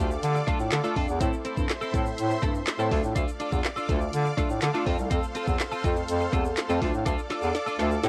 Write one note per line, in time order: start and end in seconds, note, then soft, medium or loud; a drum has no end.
0.00 0.16 D2 medium
0.00 0.34 A3 medium
0.00 0.34 D4 medium
0.00 0.34 F4 medium
0.00 0.34 G4 medium
0.00 4.83 A4 medium
0.00 1.18 D5 medium
0.00 1.17 F5 medium
0.00 1.18 D6 loud
0.11 muted clean electric guitar stroke soft
0.11 shaker medium
0.23 0.40 D3 loud
0.23 closed hi-hat loud
0.23 shaker medium
0.35 muted clean electric guitar stroke medium
0.35 shaker soft
0.47 0.74 A3 medium
0.47 0.61 D4 medium
0.47 0.74 D4 medium
0.47 0.74 F4 medium
0.47 0.59 F4 medium
0.47 0.74 A4 loud
0.47 0.58 A4 medium
0.47 kick loud
0.47 closed hi-hat medium
0.47 shaker soft
0.59 0.68 A2 medium
0.59 muted clean electric guitar stroke medium
0.59 shaker medium
0.72 0.80 D3 loud
0.72 muted clean electric guitar stroke soft
0.72 snare loud
0.72 clap loud
0.72 closed hi-hat loud
0.72 shaker medium
0.84 1.10 A3 medium
0.84 1.10 D4 medium
0.84 0.95 D4 medium
0.84 1.10 F4 medium
0.84 0.95 F4 medium
0.84 0.95 A4 medium
0.84 1.10 A4 loud
0.84 shaker medium
0.96 1.05 F2 medium
0.96 1.10 D4 medium
0.96 1.08 F4 medium
0.96 1.07 A4 loud
0.96 kick medium
0.96 open hi-hat medium
1.08 1.17 E2 medium
1.08 muted clean electric guitar stroke soft
1.08 shaker medium
1.20 1.29 A2 loud
1.20 1.73 A3 medium
1.20 1.34 C4 medium
1.20 1.73 C4 medium
1.20 1.73 E4 medium
1.20 1.35 E4 medium
1.20 1.73 A4 loud
1.20 1.35 A4 medium
1.20 2.90 C5 medium
1.20 2.90 E5 medium
1.20 2.90 C6 medium
1.20 kick loud
1.20 closed hi-hat loud
1.20 shaker medium
1.33 shaker medium
1.45 1.56 C4 medium
1.45 1.56 E4 medium
1.45 1.56 A4 medium
1.45 closed hi-hat medium
1.45 shaker medium
1.57 1.66 G2 medium
1.57 1.68 C4 medium
1.57 1.68 E4 medium
1.57 1.68 A4 medium
1.57 kick medium
1.57 shaker medium
1.69 muted clean electric guitar stroke soft
1.69 snare loud
1.69 clap loud
1.69 closed hi-hat medium
1.69 shaker medium
1.81 1.92 C4 medium
1.81 1.93 E4 medium
1.81 1.94 A4 loud
1.81 shaker soft
1.93 2.11 A2 medium
1.93 2.29 A3 medium
1.93 2.04 C4 medium
1.93 2.29 C4 medium
1.93 2.29 E4 medium
1.93 2.05 E4 medium
1.93 2.29 A4 loud
1.93 2.05 A4 medium
1.93 kick loud
1.93 closed hi-hat medium
1.93 shaker soft
2.06 muted clean electric guitar stroke soft
2.06 shaker medium
2.18 2.35 A2 loud
2.18 closed hi-hat loud
2.18 shaker medium
2.30 muted clean electric guitar stroke soft
2.30 shaker soft
2.42 2.60 G2 medium
2.42 2.69 A3 medium
2.42 2.56 C4 medium
2.42 2.69 C4 medium
2.42 2.69 E4 medium
2.42 2.54 E4 medium
2.42 2.69 A4 loud
2.42 2.53 A4 loud
2.42 kick loud
2.42 closed hi-hat medium
2.42 shaker soft
2.54 muted clean electric guitar stroke soft
2.54 shaker medium
2.67 muted clean electric guitar stroke soft
2.67 snare loud
2.67 clap loud
2.67 closed hi-hat loud
2.67 shaker medium
2.79 2.88 A2 medium
2.79 2.90 A3 medium
2.79 2.91 C4 medium
2.79 2.90 C4 medium
2.79 2.91 E4 medium
2.79 2.90 E4 medium
2.79 2.90 A4 medium
2.79 2.91 A4 loud
2.79 shaker medium
2.91 3.00 D2 loud
2.91 3.69 A3 loud
2.91 3.05 D4 medium
2.91 3.69 D4 medium
2.91 3.70 F4 medium
2.91 3.03 F4 medium
2.91 3.70 A4 loud
2.91 3.02 A4 loud
2.91 4.85 D5 medium
2.91 8.00 F5 medium
2.91 4.85 D6 medium
2.91 kick medium
2.91 open hi-hat medium
3.03 3.12 A2 medium
3.03 muted clean electric guitar stroke medium
3.03 shaker medium
3.15 3.24 D2 loud
3.15 3.29 D4 medium
3.15 3.30 F4 loud
3.15 3.30 A4 medium
3.15 kick loud
3.15 closed hi-hat loud
3.15 shaker medium
3.28 shaker medium
3.40 3.51 D4 medium
3.40 3.51 F4 medium
3.40 3.51 A4 medium
3.40 closed hi-hat medium
3.40 shaker soft
3.52 3.61 E2 medium
3.52 3.63 D4 medium
3.52 3.63 F4 medium
3.52 3.63 A4 medium
3.52 kick medium
3.52 shaker medium
3.64 muted clean electric guitar stroke soft
3.64 snare medium
3.64 clap loud
3.64 closed hi-hat medium
3.64 shaker medium
3.76 3.87 D4 medium
3.76 3.88 F4 medium
3.76 3.89 A4 medium
3.76 shaker medium
3.89 4.06 D2 loud
3.89 4.24 A3 medium
3.89 3.99 D4 medium
3.89 4.24 D4 medium
3.89 4.24 F4 medium
3.89 4.00 F4 medium
3.89 4.24 A4 loud
3.89 4.00 A4 medium
3.89 kick loud
3.89 closed hi-hat medium
3.89 shaker medium
4.01 muted clean electric guitar stroke soft
4.01 shaker medium
4.13 4.30 D3 loud
4.13 closed hi-hat loud
4.13 shaker medium
4.25 muted clean electric guitar stroke soft
4.25 shaker soft
4.37 4.64 A3 medium
4.37 4.51 D4 medium
4.37 4.64 D4 medium
4.37 4.64 F4 medium
4.37 4.50 F4 medium
4.37 4.64 A4 loud
4.37 4.48 A4 medium
4.37 kick loud
4.37 closed hi-hat medium
4.37 shaker soft
4.50 4.58 A2 medium
4.50 muted clean electric guitar stroke soft
4.50 shaker medium
4.62 4.71 D3 loud
4.62 muted clean electric guitar stroke soft
4.62 snare loud
4.62 clap loud
4.62 closed hi-hat loud
4.62 shaker medium
4.74 4.85 A3 medium
4.74 4.87 D4 medium
4.74 4.86 D4 medium
4.74 4.85 F4 medium
4.74 4.85 A4 medium
4.74 4.86 A4 loud
4.74 shaker medium
4.86 4.95 F2 loud
4.86 5.65 A3 loud
4.86 5.00 C4 medium
4.86 5.65 C4 medium
4.86 5.65 F4 medium
4.86 4.98 F4 loud
4.86 6.80 A4 medium
4.86 5.65 A4 loud
4.86 4.97 A4 loud
4.86 6.80 C5 medium
4.86 6.80 C6 medium
4.86 kick medium
4.86 open hi-hat medium
4.98 5.07 C2 medium
4.98 muted clean electric guitar stroke medium
4.98 shaker medium
5.10 5.20 F2 loud
5.10 5.24 C4 medium
5.10 5.25 F4 medium
5.10 5.25 A4 loud
5.10 kick loud
5.10 closed hi-hat loud
5.10 shaker medium
5.23 shaker medium
5.35 5.46 C4 medium
5.35 5.46 F4 medium
5.35 5.46 A4 medium
5.35 closed hi-hat medium
5.35 shaker medium
5.47 5.56 E2 medium
5.47 5.58 C4 medium
5.47 5.58 F4 medium
5.47 5.58 A4 medium
5.47 kick medium
5.47 shaker medium
5.59 muted clean electric guitar stroke soft
5.59 snare medium
5.59 clap loud
5.59 closed hi-hat medium
5.59 shaker medium
5.71 5.82 C4 medium
5.71 5.83 F4 medium
5.71 5.84 A4 loud
5.71 shaker soft
5.84 6.01 F2 loud
5.84 6.19 A3 medium
5.84 5.95 C4 medium
5.84 6.19 C4 medium
5.84 6.19 F4 medium
5.84 5.95 F4 medium
5.84 6.19 A4 loud
5.84 5.95 A4 medium
5.84 kick loud
5.84 closed hi-hat medium
5.84 shaker medium
5.96 muted clean electric guitar stroke medium
5.96 shaker medium
6.08 6.26 F2 loud
6.08 closed hi-hat loud
6.08 shaker medium
6.20 muted clean electric guitar stroke medium
6.20 shaker soft
6.32 6.50 E2 loud
6.32 6.59 A3 medium
6.32 6.46 C4 medium
6.32 6.59 C4 medium
6.32 6.59 F4 medium
6.32 6.45 F4 medium
6.32 6.59 A4 loud
6.32 6.44 A4 loud
6.32 kick loud
6.32 closed hi-hat medium
6.32 shaker soft
6.45 muted clean electric guitar stroke soft
6.45 shaker medium
6.57 muted clean electric guitar stroke soft
6.57 snare loud
6.57 clap loud
6.57 closed hi-hat loud
6.57 shaker medium
6.69 6.78 F2 loud
6.69 6.80 A3 medium
6.69 6.82 C4 medium
6.69 6.81 C4 medium
6.69 6.80 F4 medium
6.69 6.80 A4 medium
6.69 6.81 A4 loud
6.69 shaker medium
6.81 6.90 D2 loud
6.81 7.60 A3 loud
6.81 6.95 D4 medium
6.81 7.60 D4 medium
6.81 7.60 F4 medium
6.81 6.93 F4 medium
6.81 8.09 A4 medium
6.81 7.60 A4 loud
6.81 6.92 A4 medium
6.81 8.02 D5 medium
6.81 8.02 D6 medium
6.81 kick medium
6.81 open hi-hat medium
6.93 7.02 A2 medium
6.93 muted clean electric guitar stroke medium
6.93 shaker medium
7.05 7.15 D2 loud
7.05 7.19 D4 medium
7.05 7.20 F4 loud
7.05 7.20 A4 loud
7.05 kick loud
7.05 snare medium
7.05 closed hi-hat loud
7.05 shaker medium
7.18 shaker medium
7.30 7.41 D4 medium
7.30 7.41 F4 medium
7.30 7.41 A4 medium
7.30 snare medium
7.30 closed hi-hat medium
7.30 shaker medium
7.42 7.51 E2 medium
7.42 7.53 D4 medium
7.42 7.53 F4 medium
7.42 7.53 A4 medium
7.42 shaker medium
7.54 muted clean electric guitar stroke soft
7.54 snare medium
7.54 closed hi-hat medium
7.54 shaker medium
7.66 7.77 D4 medium
7.66 7.78 F4 medium
7.66 7.79 A4 medium
7.66 shaker soft
7.79 7.96 D2 loud
7.79 8.04 A3 medium
7.79 7.90 D4 medium
7.79 8.04 D4 medium
7.79 8.04 F4 medium
7.79 7.90 F4 medium
7.79 8.03 A4 loud
7.79 7.90 A4 medium
7.79 snare medium
7.79 closed hi-hat medium
7.79 shaker soft
7.91 muted clean electric guitar stroke soft
7.91 shaker medium
8.03 8.09 A2 loud
8.03 8.09 C4 medium
8.03 8.09 E4 medium
8.03 8.09 G4 medium
8.03 8.09 A4 loud
8.03 8.09 E5 medium
8.03 8.09 G5 medium
8.03 8.09 C6 medium
8.03 snare loud
8.03 closed hi-hat loud
8.03 shaker medium